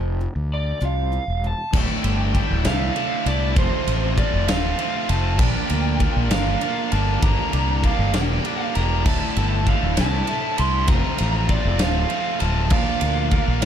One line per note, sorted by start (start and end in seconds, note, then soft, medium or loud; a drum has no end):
0.00 0.26 F1 medium
0.00 0.19 F2 medium
0.00 0.19 C3 medium
0.00 0.19 F3 medium
0.21 0.49 F2 medium
0.21 0.49 C3 medium
0.36 0.72 D2 medium
0.54 0.81 D5 medium
0.80 1.18 C2 medium
0.80 1.10 F2 medium
0.80 1.11 C3 medium
0.80 1.11 F3 loud
0.85 1.47 F5 medium
1.12 1.40 F2 medium
1.12 1.41 C3 medium
1.28 1.52 E1 medium
1.44 1.71 F2 medium
1.44 1.71 C3 medium
1.44 1.77 A5 medium
1.73 1.86 D1 loud
1.73 2.35 D2 loud
1.73 2.33 A2 loud
1.73 2.04 D3 loud
1.73 2.04 A3 loud
1.73 2.02 E4 loud
1.73 2.66 G5 loud
1.73 kick loud
1.73 crash loud
2.03 2.40 G1 medium
2.03 2.34 D3 medium
2.03 2.35 A3 medium
2.03 2.35 E4 medium
2.03 ride medium
2.34 2.93 A2 medium
2.34 2.65 D3 medium
2.34 2.64 A3 medium
2.34 2.63 E4 medium
2.34 kick medium
2.34 ride medium
2.50 2.66 D1 loud
2.64 2.89 C2 loud
2.64 2.94 D3 medium
2.64 2.95 A3 medium
2.64 2.95 E4 medium
2.64 3.29 F5 medium
2.64 snare loud
2.64 ride medium
2.94 3.55 A2 medium
2.94 3.27 D3 medium
2.94 3.26 A3 medium
2.94 3.25 E4 medium
2.94 ride medium
3.26 3.58 C2 medium
3.26 3.56 D3 medium
3.26 3.56 A3 medium
3.26 3.55 E4 medium
3.26 3.55 D5 medium
3.26 ride medium
3.56 3.69 F1 loud
3.56 4.18 F2 medium
3.56 4.18 C3 loud
3.56 3.88 F3 loud
3.56 3.87 A3 loud
3.56 3.87 C4 loud
3.56 3.86 F4 loud
3.56 4.18 C5 medium
3.56 kick loud
3.56 ride loud
3.87 4.23 A1 medium
3.87 4.17 F3 medium
3.87 4.17 A3 medium
3.87 4.18 C4 medium
3.87 4.19 F4 medium
3.87 ride medium
4.17 4.49 F3 medium
4.17 4.48 A3 medium
4.17 4.47 C4 medium
4.17 4.46 F4 medium
4.17 4.50 D5 medium
4.17 kick medium
4.17 ride medium
4.33 4.49 F1 loud
4.47 4.72 D1 loud
4.47 4.77 F3 medium
4.47 4.78 A3 medium
4.47 4.79 C4 medium
4.47 4.80 F4 medium
4.47 5.05 F5 loud
4.47 snare loud
4.47 ride loud
4.78 5.10 F3 medium
4.78 5.10 A3 medium
4.78 5.09 C4 medium
4.78 5.08 F4 loud
4.78 ride medium
5.09 5.39 F1 medium
5.09 5.38 F3 medium
5.09 5.39 A3 medium
5.09 5.38 C4 medium
5.09 5.38 F4 medium
5.09 5.41 A5 loud
5.09 ride medium
5.39 5.51 A#1 loud
5.39 6.00 A#2 loud
5.39 6.01 F3 loud
5.39 5.71 A#3 loud
5.39 5.70 D4 loud
5.39 5.68 F4 loud
5.39 5.68 A#4 loud
5.39 6.27 G5 loud
5.39 kick loud
5.39 crash medium
5.68 6.06 D2 medium
5.68 5.99 A#3 medium
5.68 6.00 D4 medium
5.68 6.00 F4 medium
5.68 6.01 A#4 medium
5.68 ride medium
5.99 6.32 A#3 medium
5.99 6.32 D4 medium
5.99 6.31 F4 medium
5.99 6.30 A#4 medium
5.99 kick medium
5.99 ride medium
6.16 6.31 A#1 medium
6.31 6.55 G1 loud
6.31 6.60 A#3 medium
6.31 6.61 D4 medium
6.31 6.61 F4 medium
6.31 6.62 A#4 medium
6.31 6.94 F5 medium
6.31 snare loud
6.31 ride loud
6.61 6.93 A#3 medium
6.61 6.93 D4 medium
6.61 6.92 F4 medium
6.61 6.91 A#4 medium
6.61 ride medium
6.92 7.16 G1 medium
6.92 7.22 A#3 medium
6.92 7.23 D4 medium
6.92 7.21 F4 medium
6.92 7.21 A#4 medium
6.92 7.20 A5 loud
6.92 ride medium
7.22 7.35 G1 loud
7.22 7.83 G2 loud
7.22 7.84 D3 loud
7.22 7.54 G3 loud
7.22 7.53 A#3 loud
7.22 7.53 D4 loud
7.22 7.51 G4 loud
7.22 7.86 A#5 loud
7.22 kick loud
7.22 ride loud
7.53 7.89 C2 medium
7.53 7.81 G3 medium
7.53 7.82 A#3 medium
7.53 7.84 D4 medium
7.53 7.83 G4 medium
7.53 ride medium
7.82 8.15 G3 medium
7.82 8.14 A#3 medium
7.82 8.14 D4 medium
7.82 8.12 G4 medium
7.82 8.14 F5 medium
7.82 kick medium
7.82 ride medium
7.99 8.14 G1 loud
8.14 8.38 E1 loud
8.14 8.43 G3 medium
8.14 8.44 A#3 medium
8.14 8.45 D4 medium
8.14 8.45 G4 medium
8.14 8.63 G5 loud
8.14 snare loud
8.14 ride loud
8.44 8.76 G3 medium
8.44 8.75 A#3 medium
8.44 8.75 D4 medium
8.44 8.73 G4 medium
8.44 ride medium
8.63 8.77 F5 loud
8.75 9.06 E1 medium
8.75 9.05 G3 medium
8.75 9.04 A#3 medium
8.75 9.10 D4 medium
8.75 9.04 G4 medium
8.75 9.03 A#5 loud
8.75 ride medium
9.05 9.18 D1 loud
9.05 9.66 D2 medium
9.05 9.65 A2 loud
9.05 9.37 D3 loud
9.05 9.37 A3 loud
9.05 9.35 E4 loud
9.05 9.69 A5 loud
9.05 kick loud
9.05 crash loud
9.36 9.72 G1 medium
9.36 9.65 D3 medium
9.36 9.67 A3 medium
9.36 9.67 E4 medium
9.36 ride medium
9.66 10.25 A2 medium
9.66 9.97 D3 medium
9.66 9.96 A3 medium
9.66 9.95 E4 medium
9.66 9.99 F5 medium
9.66 kick medium
9.66 ride medium
9.83 9.99 D1 medium
9.96 10.21 C2 loud
9.96 10.26 D3 medium
9.96 10.27 A3 medium
9.96 10.28 E4 medium
9.96 10.59 A5 loud
9.96 snare loud
9.96 ride loud
10.27 10.86 A2 medium
10.27 10.59 D3 medium
10.27 10.57 A3 medium
10.27 10.56 E4 medium
10.27 ride medium
10.57 10.90 C2 medium
10.57 10.88 D3 medium
10.57 10.87 A3 medium
10.57 10.86 E4 medium
10.57 10.88 C6 loud
10.57 ride medium
10.87 11.00 F1 loud
10.87 11.49 F2 loud
10.87 11.49 C3 loud
10.87 11.20 F3 loud
10.87 11.18 A3 loud
10.87 11.18 C4 loud
10.87 11.17 F4 loud
10.87 11.46 A#5 loud
10.87 kick loud
10.87 ride loud
11.18 11.56 A1 medium
11.18 11.48 F3 medium
11.18 11.47 A3 medium
11.18 11.49 C4 medium
11.18 11.50 F4 medium
11.18 ride medium
11.48 11.80 F3 medium
11.48 11.79 A3 medium
11.48 11.79 C4 medium
11.48 11.78 F4 medium
11.48 11.81 D5 medium
11.48 kick medium
11.48 ride medium
11.65 11.81 F1 loud
11.79 12.04 D1 medium
11.79 12.08 F3 medium
11.79 12.09 A3 medium
11.79 12.10 C4 medium
11.79 12.10 F4 medium
11.79 12.37 F5 loud
11.79 snare loud
11.79 ride loud
12.09 12.40 F3 medium
12.09 12.40 A3 medium
12.09 12.39 C4 medium
12.09 12.38 F4 medium
12.09 ride medium
12.39 12.71 D1 medium
12.39 12.69 F3 medium
12.39 12.70 A3 medium
12.39 12.69 C4 medium
12.39 12.69 F4 medium
12.39 12.69 A5 loud
12.39 ride medium
12.70 12.83 A#1 loud
12.70 13.32 A#2 loud
12.70 13.32 F3 loud
12.70 13.03 A#3 loud
12.70 13.02 D4 loud
12.70 13.00 F4 loud
12.70 13.00 A#4 loud
12.70 13.61 F5 loud
12.70 kick loud
12.70 crash medium
13.01 13.38 D2 medium
13.01 13.30 A#3 medium
13.01 13.31 D4 medium
13.01 13.31 F4 medium
13.01 13.32 A#4 medium
13.01 ride medium
13.30 13.62 A#3 medium
13.30 13.62 D4 medium
13.30 13.61 F4 medium
13.30 13.60 A#4 medium
13.30 kick medium
13.30 ride medium
13.48 13.64 A#1 loud
13.61 13.65 F4 medium
13.61 13.65 A#4 medium
13.61 ride medium